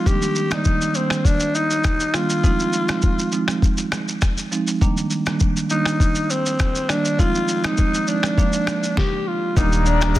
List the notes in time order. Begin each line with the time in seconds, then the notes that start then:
0.06 D#3 G3 A#3 D4 G4, kick, shaker
0.22 shaker
0.35 shaker
0.51 D#3 G3 A#3 D#4 D5, finger snap, cross-stick, shaker
0.64 kick, shaker
0.81 shaker
0.94 D#3 G3 A#3 C4 D4, shaker
1.10 finger snap, cross-stick, shaker
1.25 D4, kick, shaker
1.40 shaker
1.55 D#4, shaker
1.71 shaker
1.84 finger snap, kick, cross-stick, shaker
2.00 shaker
2.14 D#3 G3 A#3 D4 F4, finger snap, cross-stick, shaker
2.30 shaker
2.44 F3 G#3 C4 D#4, kick, shaker
2.59 shaker
2.73 shaker
2.88 F3 G#3 C4 D#4, finger snap, cross-stick, shaker
3.02 kick, shaker
3.19 shaker
3.32 F3 G#3 C4 D#4, shaker
3.48 finger snap, cross-stick, shaker
3.62 kick, shaker
3.77 shaker
3.92 finger snap, cross-stick, shaker
4.08 shaker
4.22 finger snap, kick, cross-stick, shaker
4.38 shaker
4.51 F3 G#3 C4 D#4, shaker
4.67 shaker
4.81 D#3 G3 A#3 D4, kick, shaker
4.97 shaker
5.10 shaker
5.26 D#3 G3 A#3 D4, finger snap, cross-stick, shaker
5.40 kick, shaker
5.57 shaker
5.70 D#3 G3 A#3 D4 D#4, shaker
5.85 finger snap, cross-stick, shaker
6.00 kick, shaker
6.15 shaker
6.30 C4, shaker
6.46 shaker
6.59 finger snap, kick, cross-stick, shaker
6.75 shaker
6.89 D#3 G3 A#3 D4, finger snap, cross-stick, shaker
7.05 shaker
7.19 F3 G#3 C4 D#4 F4, kick, shaker
7.35 shaker
7.48 shaker
7.64 F3 G#3 C4 D#4, finger snap, cross-stick, shaker
7.77 kick, shaker
7.94 shaker
8.07 F3 G#3 C4 D4 D#4, shaker
8.23 finger snap, cross-stick, shaker
8.38 F3 G#3 A#3 D4, kick, shaker
8.53 shaker
8.67 finger snap, cross-stick, shaker
8.83 shaker
8.97 G4, kick, snare
9.28 F4
9.56 D#1 D#3 G3 A#3 D4 D#4 G4 A#4 D5 A#5 D6, kick, low conga, shaker
9.72 shaker
9.86 D4, shaker
10.01 D#3 G3 A#3 D4, finger snap, cross-stick, shaker
10.15 kick, shaker